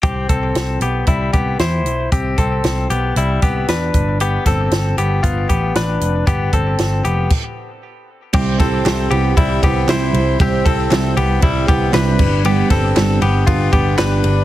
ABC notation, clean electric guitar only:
X:1
M:4/4
L:1/8
Q:1/4=116
K:C
V:1 name="Clean electric guitar"
[CG] [CA]2 [B,G] [G,E] [B,G] [Ec]2 | [CG] [CA]2 [B,G] [G,E] [B,G] [DB]2 | [B,G] [CA]2 [B,G] [B,F] [B,G] [DB]2 | [B,G] [CA]2 [B,G] z4 |
[CG] [CA]2 [B,G] [G,E] [B,G] [Ec]2 | [CG] [CA]2 [B,G] [G,E] [B,G] [DB]2 | [B,G] [CA]2 [B,G] [B,F] [B,G] [DB]2 |]